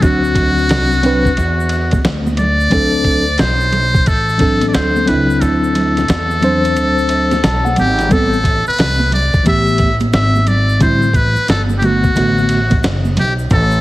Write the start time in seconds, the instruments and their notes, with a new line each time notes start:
0.00 upright bass D2, tine electric piano F#3 C4 D4, muted trumpet F#4, kick, ride, shaker
0.05 tine electric piano F#4
0.24 shaker
0.35 kick, ride, low conga, shaker
0.58 shaker
0.69 upright bass C2, snare, hi-hat pedal, ride, shaker
0.92 shaker
1.03 tine electric piano F#3 C4 D4 B4, ride, low conga, shaker
1.25 kick, shaker
1.37 upright bass E2, ride, shaker
1.60 shaker
1.69 ride, shaker
1.91 kick, ride, high conga, shaker
2.05 upright bass D2, snare, hi-hat pedal, ride, shaker
2.27 high conga, shaker
2.37 muted trumpet D5, ride, low conga, shaker
2.60 shaker
2.70 upright bass D2, tine electric piano F#3 C4 D4, kick, ride, shaker
2.74 tine electric piano A4
2.94 shaker
3.04 kick, ride, low conga, shaker
3.28 shaker
3.38 upright bass B1, muted trumpet C5, snare, hi-hat pedal, ride, shaker
3.61 shaker
3.72 ride, low conga, shaker
3.94 kick, shaker
4.06 upright bass A1, muted trumpet A4, kick, ride, shaker
4.29 shaker
4.38 tine electric piano F#3 C4 D4 A4, kick, ride, shaker
4.61 ride, high conga, shaker
4.68 muted trumpet D5
4.74 upright bass D2, muted trumpet C5, snare, hi-hat pedal, ride, shaker
4.96 high conga, shaker
5.05 upright bass C#2, tine electric piano F#3 C4 D4 E4, muted trumpet B4, ride, low conga, shaker
5.30 shaker
5.41 upright bass D2, muted trumpet A4, ride, shaker
5.64 shaker
5.75 ride, low conga, shaker
5.97 snare, ride, shaker
6.08 upright bass E2, snare, hi-hat pedal, ride, shaker
6.31 shaker
6.40 tine electric piano F#3 C4 D4 C5, ride, low conga, shaker
6.64 ride, shaker
6.77 upright bass D2, ride, shaker
6.98 shaker
7.09 ride, shaker
7.31 snare, ride, high conga, shaker
7.44 upright bass B1, tine electric piano A5, snare, hi-hat pedal, ride, shaker
7.65 tine electric piano F#5, high conga, shaker
7.76 upright bass G#1, muted trumpet G4, ride, low conga, shaker
7.99 snare, ride, shaker
8.09 upright bass A1, tine electric piano G3 B3 C4 A4, muted trumpet A4, kick, ride, shaker
8.33 shaker
8.44 kick, ride, high conga, shaker
8.66 muted trumpet B4, muted upright bass stroke, shaker
8.78 upright bass C2, snare, hi-hat pedal, ride, shaker
8.99 high conga, shaker
9.12 muted trumpet D5, ride, low conga, shaker
9.33 muted upright bass stroke, kick, shaker
9.43 upright bass A1, tine electric piano E3 A3 B3, kick, ride, shaker
9.47 tine electric piano G4, muted trumpet E5
9.67 high conga, shaker
9.78 kick, ride, shaker
10.00 ride, high conga, shaker
10.13 upright bass G#1, muted trumpet E5, snare, hi-hat pedal, ride, shaker
10.36 high conga, shaker
10.47 muted trumpet D5, ride, low conga, shaker
10.69 shaker
10.79 upright bass A1, tine electric piano D3 G3 C4 E4, muted trumpet C5, kick, ride, shaker
11.02 shaker
11.13 muted trumpet B4, kick, ride, high conga, shaker
11.36 muted upright bass stroke, shaker
11.48 upright bass G1, muted trumpet A4, snare, hi-hat pedal, ride, shaker
11.69 high conga, shaker
11.78 tine electric piano D3 A3, muted trumpet G4, low conga, shaker
11.82 tine electric piano B3 F#4, muted trumpet F#4, ride
12.03 muted upright bass stroke, kick, shaker
12.14 upright bass A1, tine electric piano D3 A3 B3 F#4, ride, shaker
12.38 high conga, shaker
12.49 ride, shaker
12.70 kick, ride, high conga, shaker
12.84 upright bass F#1, snare, hi-hat pedal, ride, shaker
13.05 high conga, shaker
13.17 upright bass B1, muted trumpet G4, ride, low conga, shaker
13.39 shaker
13.50 upright bass A1, muted trumpet A4, kick, ride, shaker
13.71 shaker